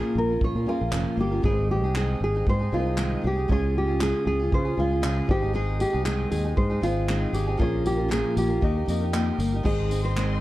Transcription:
Already playing: steel-string acoustic guitar A#2 F3 A#3 C#4 F4 A#4, upright piano A#3 C#4 F4 C#5, nylon-string guitar G#4
0.15 fretless electric bass A#1, nylon-string guitar A#4
0.29 steel-string acoustic guitar A#3 C#4 F4 A#4
0.41 fretless electric bass A#1, nylon-string guitar C#5, kick
0.55 fretless electric bass A#2, steel-string acoustic guitar A#3 C#4 F4 A#4
0.66 steel-string acoustic guitar A#3 C#4 F4 A#4, upright piano A#3 C#4 F4 G#4, nylon-string guitar F4
0.79 fretless electric bass A#1, steel-string acoustic guitar A#3 C#4 F4 A#4
0.91 fretless electric bass F1, steel-string acoustic guitar A#2 F3 A#3 C#4 F4 A#4, clap
1.17 fretless electric bass G1, steel-string acoustic guitar A#3 C#4 F4 A#4, nylon-string guitar G4
1.31 steel-string acoustic guitar A#3 C#4 F4 A#4
1.42 fretless electric bass G#1, steel-string acoustic guitar G#2 D#3 G#3 C4 D#4 G#4, upright piano G#3 C4 D#4 B4, nylon-string guitar G#4, kick
1.52 upright piano C5
1.71 nylon-string guitar G4
1.83 fretless electric bass C2, steel-string acoustic guitar G#3 C4 D#4 G#4
1.95 steel-string acoustic guitar G#2 D#3 G#3 C4 D#4 G#4, nylon-string guitar G#4, clap
2.20 fretless electric bass G#1, nylon-string guitar G#4
2.35 steel-string acoustic guitar G#3 C4 D#4 G#4
2.47 fretless electric bass G#2, nylon-string guitar C5, kick
2.59 steel-string acoustic guitar G#3 C4 D#4 G#4
2.72 fretless electric bass C2, steel-string acoustic guitar G#3 C4 D#4 G#4, upright piano G#3 C4 D#4 A#4, nylon-string guitar F4
2.80 upright piano C5
2.85 steel-string acoustic guitar G#3 C4 D#4 G#4
2.96 steel-string acoustic guitar G#2 D#3 G#3 C4 D#4 G#4, clap
3.21 fretless electric bass C2, steel-string acoustic guitar G#3 C4 D#4 G#4
3.27 nylon-string guitar G4
3.36 steel-string acoustic guitar G#3 C4 D#4 G#4
3.48 fretless electric bass C#2, steel-string acoustic guitar C#3 G#3 C#4 F4 G#4, upright piano G#3 C#4 F4 C#5, kick
3.52 nylon-string guitar G#4
3.78 nylon-string guitar G4
3.87 steel-string acoustic guitar C#4 F4 G#4
3.99 steel-string acoustic guitar C#3 G#3 C#4 F4 G#4, nylon-string guitar G#4, clap
4.26 fretless electric bass C#2, nylon-string guitar G#4
4.39 steel-string acoustic guitar C#4 F4 G#4
4.52 fretless electric bass C#3, nylon-string guitar C5, kick
4.65 steel-string acoustic guitar C#4 F4 G#4
4.77 fretless electric bass C#2, upright piano G#3 C#4 F4 G#4, steel-string acoustic guitar G#3 C#4 F4 G#4, nylon-string guitar F4
4.91 steel-string acoustic guitar C#4 F4 G#4
5.02 steel-string acoustic guitar C#3 G#3 C#4 F4 G#4, clap
5.27 fretless electric bass G#1, steel-string acoustic guitar G#3 C4 D#4 G#4, upright piano G#3 C4 D#4 C5, kick
5.31 nylon-string guitar G4
5.41 steel-string acoustic guitar G#3 C4 D#4 G#4
5.53 steel-string acoustic guitar G#2 D#3 G#3 C4 D#4 G#4, nylon-string guitar G#4
5.80 nylon-string guitar G4, tambourine
5.93 fretless electric bass C2, steel-string acoustic guitar G#3 C4 D#4 G#4
6.05 steel-string acoustic guitar G#2 D#3 G#3 C4 D#4 G#4, nylon-string guitar G#4, clap
6.31 fretless electric bass D#2, nylon-string guitar G#4, tambourine
6.44 steel-string acoustic guitar G#3 C4 D#4 G#4
6.57 fretless electric bass G#2, nylon-string guitar C5, kick
6.70 steel-string acoustic guitar G#3 C4 D#4 G#4
6.81 fretless electric bass G#1, steel-string acoustic guitar G#3 C4 D#4 G#4, upright piano G#3 C4 D#4 C5, nylon-string guitar F4, tambourine
7.08 steel-string acoustic guitar G#2 D#3 G#3 C4 D#4 G#4, clap
7.33 fretless electric bass G#1, steel-string acoustic guitar G#3 C4 D#4 G#4, nylon-string guitar G4, tambourine
7.47 steel-string acoustic guitar G#3 C4 D#4 G#4
7.57 fretless electric bass A#1, steel-string acoustic guitar A#2 F3 A#3 C#4 F4 A#4, upright piano A#3 C#4 F4, nylon-string guitar G#4, kick
7.62 upright piano C#5
7.86 nylon-string guitar G4, tambourine
7.97 steel-string acoustic guitar A#3 C#4 F4 A#4
8.08 steel-string acoustic guitar A#2 F3 A#3 C#4 F4 A#4, clap
8.12 nylon-string guitar G#4
8.36 fretless electric bass A#1, nylon-string guitar G4, tambourine
8.49 steel-string acoustic guitar A#3 C#4 F4 A#4
8.61 fretless electric bass D#2, steel-string acoustic guitar D#3 A#3 D#4 G4 A#4, upright piano A#3 D#4 G4 D#5, kick
8.75 steel-string acoustic guitar D#4 G4 A#4
8.86 fretless electric bass F2, steel-string acoustic guitar A#3 D#4 G4 A#4, upright piano A#3 D#4 G4 D#5, tambourine
9.00 steel-string acoustic guitar D#4 G4 A#4
9.13 steel-string acoustic guitar D#3 A#3 D#4 G4 A#4, clap
9.38 fretless electric bass G1, steel-string acoustic guitar A#3 D#4 G4 A#4, tambourine
9.52 steel-string acoustic guitar D#4 G4 A#4
9.63 fretless electric bass G#1, steel-string acoustic guitar G#2 D#3 G#3 C4 D#4 G#4, upright piano C4 D#4 G#4 D#5, nylon-string guitar G#4, string section G#4 C5 D#5 C6, kick, crash
9.89 steel-string acoustic guitar G#3 C4 D#4 G#4, tambourine
10.05 nylon-string guitar C5
10.16 steel-string acoustic guitar G#2 D#3 G#3 C4 D#4 G#4, clap

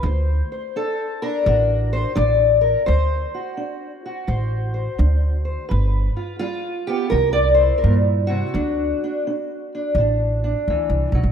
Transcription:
0.03 upright bass D2, steel-string acoustic guitar D3 C5
0.52 steel-string acoustic guitar C5
0.76 steel-string acoustic guitar D4 A4
1.22 steel-string acoustic guitar D4 A#4
1.46 upright bass A1, steel-string acoustic guitar D3 F#4
1.93 steel-string acoustic guitar C5
2.15 upright bass A1, steel-string acoustic guitar D4 D5
2.61 steel-string acoustic guitar A#4
2.86 upright bass D2, steel-string acoustic guitar D3 C5
3.34 steel-string acoustic guitar F#4
3.57 steel-string acoustic guitar D4
4.06 steel-string acoustic guitar F#4
4.27 upright bass A1, steel-string acoustic guitar D3 C5
4.74 steel-string acoustic guitar C5
4.98 upright bass D2, steel-string acoustic guitar D4
5.45 steel-string acoustic guitar C5
5.69 upright bass G1, steel-string acoustic guitar G2 B4
6.17 steel-string acoustic guitar F4
6.39 steel-string acoustic guitar G3 F4
6.87 steel-string acoustic guitar B3 G4
7.10 upright bass C2, steel-string acoustic guitar A#4
7.14 steel-string acoustic guitar C3
7.33 steel-string acoustic guitar D5
7.54 steel-string acoustic guitar C5
7.60 steel-string acoustic guitar E4
7.78 steel-string acoustic guitar A#4
7.84 upright bass G2, steel-string acoustic guitar A#2
8.27 steel-string acoustic guitar C3 F#4
8.54 upright bass D2, steel-string acoustic guitar D3 D4
9.04 steel-string acoustic guitar D4
9.27 steel-string acoustic guitar D4
9.75 steel-string acoustic guitar D4
9.95 upright bass A1, steel-string acoustic guitar D3
10.00 steel-string acoustic guitar D4
10.44 steel-string acoustic guitar D4
10.68 upright bass D2, steel-string acoustic guitar E3
10.90 upright bass C2
11.12 upright bass B1, steel-string acoustic guitar F#3
11.23 upright bass A1

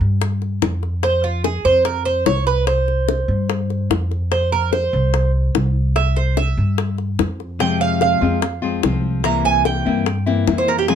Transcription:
0.01 upright bass G2
0.22 high bongo
0.42 high bongo
0.62 upright bass F2, high bongo, low bongo
0.83 high bongo
1.03 cuban tres C5, high bongo
1.24 cuban tres F4
1.44 cuban tres G#4, high bongo
1.65 upright bass F2, cuban tres C5
1.85 cuban tres A#4, high bongo
2.05 cuban tres C5
2.26 upright bass C2, cuban tres C#5, high bongo, low bongo
2.47 cuban tres B4
2.67 cuban tres C5, high bongo
2.88 high bongo
3.08 high bongo
3.28 upright bass G2
3.50 high bongo
3.70 high bongo
3.90 upright bass F2, high bongo, low bongo
4.11 high bongo
4.32 cuban tres C5, high bongo
4.52 cuban tres A#4
4.73 cuban tres C5, high bongo
4.93 upright bass C2
5.14 high bongo
5.55 upright bass C2, high bongo, low bongo
5.96 cuban tres E5, high bongo
6.16 cuban tres C5, high bongo
6.37 cuban tres E5, high bongo
6.57 upright bass G2
6.78 high bongo
6.98 high bongo
7.19 upright bass F2, high bongo, low bongo
7.40 high bongo
7.59 nylon-string guitar C3 F3 G#3 C4 F4, cuban tres G5, high bongo
7.81 cuban tres F5
8.01 cuban tres F5, high bongo
8.21 upright bass F2, nylon-string guitar F3 G#3 C4 F4
8.42 muted nylon-string guitar stroke, high bongo
8.62 nylon-string guitar F3 G#3 C4 F4
8.83 upright bass C2, nylon-string guitar F3 G#3 C4 F4, high bongo, low bongo
9.23 nylon-string guitar C3 E3 A#3 C4 E4, cuban tres A#5, high bongo
9.45 cuban tres G#5, high bongo
9.65 cuban tres G5, high bongo
9.85 upright bass G2, nylon-string guitar E3 A#3 C4 E4
10.06 muted nylon-string guitar stroke, high bongo
10.26 nylon-string guitar E3 A#3 C4 E4, high bongo
10.47 nylon-string guitar E3 A#3 C4 E4, high bongo, low bongo
10.58 cuban tres C5
10.68 cuban tres A#4, high bongo
10.78 cuban tres G4
10.88 nylon-string guitar C3 F3 G#3 C4 F4, cuban tres G#4, high bongo

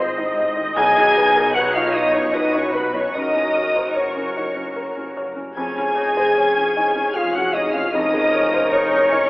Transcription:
Already playing: double bass section G#1, felt piano G#2 D#4 F4 C#5 D#5, cello section G#2, harp G#2 D#3 D#4 D#5 D#6, french horn section C4, viola section C4, flute C5, violin section C5 C6
0.00 felt piano C5, harp C5, viola section D#5
0.18 felt piano D#4, harp D#5
0.38 harp C4, felt piano D#5
0.57 harp D#3, felt piano D#4
0.76 felt piano B1, double bass section B1, harp B2, cello section B2, viola section D#4, french horn section G#4, flute G#5, violin section G#5 G#6
0.97 harp F#3, felt piano D#4
1.16 harp D#4, felt piano B4
1.36 felt piano A#4, harp B4
1.55 viola section D#4 C#5, harp D#4, french horn section F#4, felt piano B4, flute F#5, violin section F#5 F#6
1.74 felt piano D#4, french horn section F4, harp D#5, flute F5, violin section F5 F6
1.93 felt piano F4, flute D#5, violin section D#5 D#6, harp B5
1.98 french horn section D#4
2.13 felt piano D#4, violin section C#5 C#6, flute C#5, harp D#5
2.17 french horn section C#4
2.33 french horn section D#4, viola section F#4 B4, harp B4, felt piano B4, violin section D#5 D#6, flute D#5
2.52 harp D#4, felt piano D#4, violin section C#5, flute C#5
2.57 french horn section C#4, violin section C#6
2.73 harp B3, violin section B4 B5, flute B4, felt piano B4
2.77 french horn section B3
2.93 harp F#3, felt piano D#4, violin section C#5 C#6, flute C#5
2.99 french horn section C#4
3.14 double bass section F#1, harp F#2, felt piano F#2, cello section F#2, french horn section D#4, viola section F#4 A#4, violin section D#5 D#6, flute D#5
3.34 harp C#3, felt piano C#4
3.54 harp C#4, felt piano C#5
3.75 felt piano C5, harp C#5
3.95 french horn section C#4, harp A#4, flute C#5, felt piano C#5, violin section C#5 C#6
4.16 felt piano C#4, harp C#5
4.36 felt piano D#4, harp C#6
4.56 felt piano C#4, harp C#5
4.76 felt piano A#4, harp A#4
4.96 felt piano C#4, harp C#5
5.16 harp A#3, felt piano C#5
5.36 harp C#3, felt piano C#4
5.56 double bass section F1, cello section F2, harp F2, felt piano F2, viola section C#4 G#4, french horn section G#4, flute G#5, violin section G#5 G#6
5.77 harp F3, felt piano C#4
5.97 harp C#4, viola section D#4, felt piano C#5
6.16 felt piano C5, harp C#5
6.36 viola section C#4, harp G#4, felt piano C#5
6.57 felt piano C#4, harp C#5
6.76 viola section C#4, felt piano D#4, harp C#6
6.95 felt piano C#4, harp C#5
7.13 french horn section F4, harp G#4, felt piano G#4, viola section G#4, violin section F5 F6, flute F5
7.34 felt piano C#4, french horn section F#4, harp C#5, violin section F#5 F#6, flute F#5
7.54 harp G#3, french horn section D#4, felt piano C#5, flute D#5, violin section D#5 D#6
7.73 harp F3, felt piano C#4, french horn section F4, violin section F5 F6, flute F5
7.93 harp F2, felt piano F2, viola section C#4 A#4, french horn section D#4, violin section D#5 D#6, flute D#5
8.14 harp G#3, felt piano G#3
8.33 harp C#4, felt piano C#5
8.53 felt piano C5, harp C#5
8.72 french horn section C#4, viola section D#4, harp G#4, flute C#5, violin section C#5 C#6, felt piano C#5
8.93 felt piano C#4
9.10 viola section C#4, felt piano D#4, harp C#6

